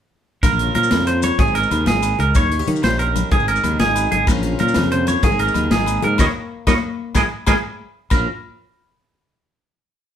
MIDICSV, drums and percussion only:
0, 0, Header, 1, 2, 480
1, 0, Start_track
1, 0, Key_signature, -5, "minor"
1, 0, Tempo, 319829
1, 648, Time_signature, 12, 3, 24, 8
1, 15235, End_track
2, 0, Start_track
2, 0, Title_t, "Drums"
2, 645, Note_on_c, 9, 36, 84
2, 645, Note_on_c, 9, 42, 68
2, 645, Note_on_c, 9, 68, 54
2, 652, Note_on_c, 9, 70, 90
2, 656, Note_on_c, 9, 62, 100
2, 774, Note_on_c, 9, 63, 72
2, 774, Note_on_c, 9, 64, 30
2, 795, Note_off_c, 9, 36, 0
2, 795, Note_off_c, 9, 42, 0
2, 796, Note_off_c, 9, 68, 0
2, 802, Note_off_c, 9, 70, 0
2, 806, Note_off_c, 9, 62, 0
2, 888, Note_on_c, 9, 42, 46
2, 894, Note_off_c, 9, 64, 0
2, 894, Note_on_c, 9, 64, 28
2, 924, Note_off_c, 9, 63, 0
2, 1005, Note_off_c, 9, 64, 0
2, 1005, Note_on_c, 9, 64, 72
2, 1038, Note_off_c, 9, 42, 0
2, 1121, Note_off_c, 9, 64, 0
2, 1121, Note_on_c, 9, 63, 96
2, 1121, Note_on_c, 9, 64, 31
2, 1124, Note_on_c, 9, 42, 52
2, 1251, Note_on_c, 9, 70, 71
2, 1271, Note_off_c, 9, 63, 0
2, 1271, Note_off_c, 9, 64, 0
2, 1274, Note_off_c, 9, 42, 0
2, 1364, Note_on_c, 9, 62, 92
2, 1365, Note_on_c, 9, 38, 92
2, 1365, Note_on_c, 9, 42, 68
2, 1374, Note_on_c, 9, 68, 60
2, 1401, Note_off_c, 9, 70, 0
2, 1487, Note_on_c, 9, 63, 68
2, 1487, Note_on_c, 9, 64, 62
2, 1514, Note_off_c, 9, 62, 0
2, 1515, Note_off_c, 9, 38, 0
2, 1515, Note_off_c, 9, 42, 0
2, 1524, Note_off_c, 9, 68, 0
2, 1602, Note_on_c, 9, 42, 52
2, 1603, Note_off_c, 9, 64, 0
2, 1603, Note_on_c, 9, 64, 29
2, 1608, Note_on_c, 9, 70, 30
2, 1637, Note_off_c, 9, 63, 0
2, 1752, Note_off_c, 9, 42, 0
2, 1753, Note_off_c, 9, 64, 0
2, 1758, Note_off_c, 9, 70, 0
2, 1838, Note_on_c, 9, 70, 108
2, 1845, Note_on_c, 9, 42, 52
2, 1848, Note_on_c, 9, 63, 96
2, 1849, Note_on_c, 9, 68, 56
2, 1988, Note_off_c, 9, 70, 0
2, 1995, Note_off_c, 9, 42, 0
2, 1998, Note_off_c, 9, 63, 0
2, 1999, Note_off_c, 9, 68, 0
2, 2081, Note_on_c, 9, 42, 65
2, 2082, Note_on_c, 9, 62, 88
2, 2082, Note_on_c, 9, 64, 96
2, 2085, Note_on_c, 9, 36, 92
2, 2095, Note_on_c, 9, 70, 26
2, 2200, Note_on_c, 9, 63, 58
2, 2211, Note_off_c, 9, 70, 0
2, 2211, Note_on_c, 9, 70, 27
2, 2231, Note_off_c, 9, 42, 0
2, 2232, Note_off_c, 9, 62, 0
2, 2232, Note_off_c, 9, 64, 0
2, 2235, Note_off_c, 9, 36, 0
2, 2324, Note_on_c, 9, 42, 50
2, 2350, Note_off_c, 9, 63, 0
2, 2361, Note_off_c, 9, 70, 0
2, 2447, Note_on_c, 9, 70, 71
2, 2474, Note_off_c, 9, 42, 0
2, 2566, Note_on_c, 9, 63, 80
2, 2568, Note_on_c, 9, 68, 62
2, 2570, Note_on_c, 9, 42, 46
2, 2597, Note_off_c, 9, 70, 0
2, 2677, Note_on_c, 9, 64, 64
2, 2716, Note_off_c, 9, 63, 0
2, 2718, Note_off_c, 9, 68, 0
2, 2720, Note_off_c, 9, 42, 0
2, 2793, Note_off_c, 9, 64, 0
2, 2793, Note_on_c, 9, 62, 98
2, 2793, Note_on_c, 9, 64, 31
2, 2806, Note_on_c, 9, 70, 31
2, 2807, Note_on_c, 9, 38, 87
2, 2807, Note_on_c, 9, 42, 71
2, 2921, Note_on_c, 9, 63, 68
2, 2944, Note_off_c, 9, 62, 0
2, 2944, Note_off_c, 9, 64, 0
2, 2956, Note_off_c, 9, 70, 0
2, 2957, Note_off_c, 9, 38, 0
2, 2957, Note_off_c, 9, 42, 0
2, 3039, Note_on_c, 9, 68, 64
2, 3039, Note_on_c, 9, 70, 88
2, 3043, Note_on_c, 9, 42, 51
2, 3071, Note_off_c, 9, 63, 0
2, 3164, Note_on_c, 9, 64, 30
2, 3189, Note_off_c, 9, 68, 0
2, 3190, Note_off_c, 9, 70, 0
2, 3193, Note_off_c, 9, 42, 0
2, 3283, Note_off_c, 9, 64, 0
2, 3283, Note_on_c, 9, 64, 90
2, 3295, Note_on_c, 9, 42, 47
2, 3433, Note_off_c, 9, 64, 0
2, 3445, Note_off_c, 9, 42, 0
2, 3522, Note_on_c, 9, 70, 90
2, 3523, Note_on_c, 9, 62, 81
2, 3531, Note_on_c, 9, 42, 58
2, 3532, Note_on_c, 9, 36, 85
2, 3540, Note_on_c, 9, 68, 55
2, 3651, Note_on_c, 9, 63, 70
2, 3651, Note_on_c, 9, 64, 28
2, 3672, Note_off_c, 9, 70, 0
2, 3674, Note_off_c, 9, 62, 0
2, 3681, Note_off_c, 9, 42, 0
2, 3682, Note_off_c, 9, 36, 0
2, 3690, Note_off_c, 9, 68, 0
2, 3771, Note_off_c, 9, 64, 0
2, 3771, Note_on_c, 9, 42, 45
2, 3771, Note_on_c, 9, 64, 24
2, 3801, Note_off_c, 9, 63, 0
2, 3887, Note_off_c, 9, 64, 0
2, 3887, Note_on_c, 9, 64, 70
2, 3921, Note_off_c, 9, 42, 0
2, 4011, Note_off_c, 9, 64, 0
2, 4011, Note_on_c, 9, 63, 85
2, 4011, Note_on_c, 9, 64, 28
2, 4012, Note_on_c, 9, 42, 48
2, 4141, Note_on_c, 9, 70, 66
2, 4161, Note_off_c, 9, 63, 0
2, 4161, Note_off_c, 9, 64, 0
2, 4162, Note_off_c, 9, 42, 0
2, 4246, Note_on_c, 9, 68, 60
2, 4252, Note_on_c, 9, 62, 85
2, 4259, Note_on_c, 9, 38, 94
2, 4259, Note_on_c, 9, 42, 67
2, 4291, Note_off_c, 9, 70, 0
2, 4367, Note_on_c, 9, 63, 64
2, 4367, Note_on_c, 9, 64, 67
2, 4396, Note_off_c, 9, 68, 0
2, 4402, Note_off_c, 9, 62, 0
2, 4409, Note_off_c, 9, 38, 0
2, 4409, Note_off_c, 9, 42, 0
2, 4496, Note_on_c, 9, 42, 48
2, 4502, Note_on_c, 9, 70, 30
2, 4517, Note_off_c, 9, 63, 0
2, 4517, Note_off_c, 9, 64, 0
2, 4646, Note_off_c, 9, 42, 0
2, 4652, Note_off_c, 9, 70, 0
2, 4735, Note_on_c, 9, 42, 51
2, 4735, Note_on_c, 9, 68, 61
2, 4737, Note_on_c, 9, 63, 99
2, 4746, Note_on_c, 9, 70, 87
2, 4885, Note_off_c, 9, 42, 0
2, 4885, Note_off_c, 9, 68, 0
2, 4887, Note_off_c, 9, 63, 0
2, 4897, Note_off_c, 9, 70, 0
2, 4972, Note_on_c, 9, 62, 95
2, 4972, Note_on_c, 9, 64, 97
2, 4976, Note_on_c, 9, 36, 83
2, 4981, Note_on_c, 9, 42, 65
2, 4981, Note_on_c, 9, 70, 26
2, 5096, Note_on_c, 9, 63, 65
2, 5097, Note_off_c, 9, 70, 0
2, 5097, Note_on_c, 9, 70, 26
2, 5122, Note_off_c, 9, 62, 0
2, 5122, Note_off_c, 9, 64, 0
2, 5126, Note_off_c, 9, 36, 0
2, 5132, Note_off_c, 9, 42, 0
2, 5219, Note_on_c, 9, 42, 47
2, 5247, Note_off_c, 9, 63, 0
2, 5247, Note_off_c, 9, 70, 0
2, 5338, Note_on_c, 9, 70, 66
2, 5370, Note_off_c, 9, 42, 0
2, 5456, Note_on_c, 9, 68, 64
2, 5460, Note_on_c, 9, 63, 87
2, 5467, Note_on_c, 9, 42, 50
2, 5488, Note_off_c, 9, 70, 0
2, 5579, Note_on_c, 9, 64, 72
2, 5606, Note_off_c, 9, 68, 0
2, 5610, Note_off_c, 9, 63, 0
2, 5617, Note_off_c, 9, 42, 0
2, 5696, Note_off_c, 9, 64, 0
2, 5696, Note_on_c, 9, 62, 104
2, 5696, Note_on_c, 9, 64, 30
2, 5697, Note_on_c, 9, 38, 86
2, 5697, Note_on_c, 9, 42, 75
2, 5705, Note_on_c, 9, 70, 30
2, 5819, Note_on_c, 9, 63, 74
2, 5846, Note_off_c, 9, 62, 0
2, 5846, Note_off_c, 9, 64, 0
2, 5847, Note_off_c, 9, 38, 0
2, 5847, Note_off_c, 9, 42, 0
2, 5856, Note_off_c, 9, 70, 0
2, 5937, Note_on_c, 9, 42, 57
2, 5937, Note_on_c, 9, 68, 66
2, 5953, Note_on_c, 9, 70, 98
2, 5969, Note_off_c, 9, 63, 0
2, 6067, Note_on_c, 9, 64, 32
2, 6087, Note_off_c, 9, 42, 0
2, 6087, Note_off_c, 9, 68, 0
2, 6103, Note_off_c, 9, 70, 0
2, 6177, Note_on_c, 9, 42, 49
2, 6182, Note_off_c, 9, 64, 0
2, 6182, Note_on_c, 9, 63, 95
2, 6182, Note_on_c, 9, 64, 92
2, 6328, Note_off_c, 9, 42, 0
2, 6332, Note_off_c, 9, 63, 0
2, 6332, Note_off_c, 9, 64, 0
2, 6408, Note_on_c, 9, 42, 69
2, 6408, Note_on_c, 9, 68, 59
2, 6414, Note_on_c, 9, 36, 86
2, 6436, Note_on_c, 9, 62, 93
2, 6441, Note_on_c, 9, 70, 91
2, 6553, Note_on_c, 9, 63, 72
2, 6553, Note_on_c, 9, 64, 31
2, 6558, Note_off_c, 9, 42, 0
2, 6559, Note_off_c, 9, 68, 0
2, 6564, Note_off_c, 9, 36, 0
2, 6586, Note_off_c, 9, 62, 0
2, 6591, Note_off_c, 9, 70, 0
2, 6644, Note_on_c, 9, 42, 51
2, 6703, Note_off_c, 9, 63, 0
2, 6703, Note_off_c, 9, 64, 0
2, 6789, Note_on_c, 9, 64, 76
2, 6794, Note_off_c, 9, 42, 0
2, 6884, Note_on_c, 9, 42, 50
2, 6903, Note_off_c, 9, 64, 0
2, 6903, Note_on_c, 9, 63, 101
2, 6903, Note_on_c, 9, 64, 33
2, 7029, Note_on_c, 9, 70, 69
2, 7034, Note_off_c, 9, 42, 0
2, 7053, Note_off_c, 9, 63, 0
2, 7053, Note_off_c, 9, 64, 0
2, 7119, Note_on_c, 9, 38, 96
2, 7119, Note_on_c, 9, 42, 67
2, 7127, Note_on_c, 9, 68, 63
2, 7141, Note_on_c, 9, 62, 97
2, 7179, Note_off_c, 9, 70, 0
2, 7258, Note_on_c, 9, 63, 68
2, 7258, Note_on_c, 9, 64, 75
2, 7269, Note_off_c, 9, 38, 0
2, 7269, Note_off_c, 9, 42, 0
2, 7277, Note_off_c, 9, 68, 0
2, 7291, Note_off_c, 9, 62, 0
2, 7376, Note_on_c, 9, 42, 46
2, 7380, Note_off_c, 9, 64, 0
2, 7380, Note_on_c, 9, 64, 29
2, 7382, Note_on_c, 9, 70, 27
2, 7408, Note_off_c, 9, 63, 0
2, 7526, Note_off_c, 9, 42, 0
2, 7530, Note_off_c, 9, 64, 0
2, 7532, Note_off_c, 9, 70, 0
2, 7604, Note_on_c, 9, 42, 46
2, 7606, Note_on_c, 9, 68, 57
2, 7625, Note_on_c, 9, 63, 96
2, 7626, Note_on_c, 9, 70, 85
2, 7754, Note_off_c, 9, 42, 0
2, 7756, Note_off_c, 9, 68, 0
2, 7776, Note_off_c, 9, 63, 0
2, 7776, Note_off_c, 9, 70, 0
2, 7849, Note_on_c, 9, 42, 67
2, 7850, Note_on_c, 9, 36, 82
2, 7858, Note_on_c, 9, 62, 100
2, 7858, Note_on_c, 9, 64, 108
2, 7859, Note_on_c, 9, 70, 24
2, 7970, Note_on_c, 9, 63, 72
2, 7977, Note_off_c, 9, 70, 0
2, 7977, Note_on_c, 9, 70, 27
2, 7999, Note_off_c, 9, 42, 0
2, 8000, Note_off_c, 9, 36, 0
2, 8008, Note_off_c, 9, 62, 0
2, 8008, Note_off_c, 9, 64, 0
2, 8095, Note_on_c, 9, 42, 44
2, 8120, Note_off_c, 9, 63, 0
2, 8127, Note_off_c, 9, 70, 0
2, 8225, Note_on_c, 9, 70, 65
2, 8245, Note_off_c, 9, 42, 0
2, 8319, Note_on_c, 9, 68, 63
2, 8331, Note_on_c, 9, 63, 90
2, 8334, Note_on_c, 9, 42, 44
2, 8375, Note_off_c, 9, 70, 0
2, 8460, Note_on_c, 9, 64, 78
2, 8469, Note_off_c, 9, 68, 0
2, 8481, Note_off_c, 9, 63, 0
2, 8484, Note_off_c, 9, 42, 0
2, 8568, Note_off_c, 9, 64, 0
2, 8568, Note_on_c, 9, 38, 91
2, 8568, Note_on_c, 9, 42, 66
2, 8568, Note_on_c, 9, 62, 99
2, 8568, Note_on_c, 9, 64, 32
2, 8592, Note_on_c, 9, 70, 23
2, 8681, Note_on_c, 9, 63, 73
2, 8718, Note_off_c, 9, 38, 0
2, 8718, Note_off_c, 9, 42, 0
2, 8718, Note_off_c, 9, 62, 0
2, 8718, Note_off_c, 9, 64, 0
2, 8742, Note_off_c, 9, 70, 0
2, 8801, Note_on_c, 9, 68, 66
2, 8813, Note_on_c, 9, 42, 51
2, 8820, Note_on_c, 9, 70, 86
2, 8831, Note_off_c, 9, 63, 0
2, 8929, Note_on_c, 9, 64, 35
2, 8951, Note_off_c, 9, 68, 0
2, 8963, Note_off_c, 9, 42, 0
2, 8970, Note_off_c, 9, 70, 0
2, 9041, Note_off_c, 9, 64, 0
2, 9041, Note_on_c, 9, 63, 88
2, 9041, Note_on_c, 9, 64, 100
2, 9048, Note_on_c, 9, 42, 43
2, 9191, Note_off_c, 9, 63, 0
2, 9191, Note_off_c, 9, 64, 0
2, 9198, Note_off_c, 9, 42, 0
2, 9276, Note_on_c, 9, 68, 86
2, 9280, Note_on_c, 9, 62, 90
2, 9290, Note_on_c, 9, 36, 71
2, 9291, Note_on_c, 9, 38, 68
2, 9301, Note_on_c, 9, 70, 100
2, 9426, Note_off_c, 9, 68, 0
2, 9430, Note_off_c, 9, 62, 0
2, 9440, Note_off_c, 9, 36, 0
2, 9441, Note_off_c, 9, 38, 0
2, 9451, Note_off_c, 9, 70, 0
2, 10008, Note_on_c, 9, 68, 103
2, 10011, Note_on_c, 9, 38, 74
2, 10013, Note_on_c, 9, 36, 76
2, 10014, Note_on_c, 9, 62, 96
2, 10029, Note_on_c, 9, 70, 92
2, 10158, Note_off_c, 9, 68, 0
2, 10161, Note_off_c, 9, 38, 0
2, 10163, Note_off_c, 9, 36, 0
2, 10164, Note_off_c, 9, 62, 0
2, 10179, Note_off_c, 9, 70, 0
2, 10724, Note_on_c, 9, 68, 84
2, 10728, Note_on_c, 9, 38, 72
2, 10729, Note_on_c, 9, 62, 104
2, 10733, Note_on_c, 9, 36, 70
2, 10747, Note_on_c, 9, 70, 93
2, 10874, Note_off_c, 9, 68, 0
2, 10878, Note_off_c, 9, 38, 0
2, 10879, Note_off_c, 9, 62, 0
2, 10883, Note_off_c, 9, 36, 0
2, 10897, Note_off_c, 9, 70, 0
2, 11204, Note_on_c, 9, 68, 94
2, 11210, Note_on_c, 9, 38, 70
2, 11216, Note_on_c, 9, 36, 69
2, 11222, Note_on_c, 9, 62, 91
2, 11230, Note_on_c, 9, 70, 81
2, 11354, Note_off_c, 9, 68, 0
2, 11360, Note_off_c, 9, 38, 0
2, 11366, Note_off_c, 9, 36, 0
2, 11372, Note_off_c, 9, 62, 0
2, 11380, Note_off_c, 9, 70, 0
2, 12161, Note_on_c, 9, 68, 88
2, 12171, Note_on_c, 9, 49, 66
2, 12177, Note_on_c, 9, 36, 79
2, 12178, Note_on_c, 9, 62, 76
2, 12183, Note_on_c, 9, 70, 78
2, 12312, Note_off_c, 9, 68, 0
2, 12321, Note_off_c, 9, 49, 0
2, 12327, Note_off_c, 9, 36, 0
2, 12328, Note_off_c, 9, 62, 0
2, 12333, Note_off_c, 9, 70, 0
2, 15235, End_track
0, 0, End_of_file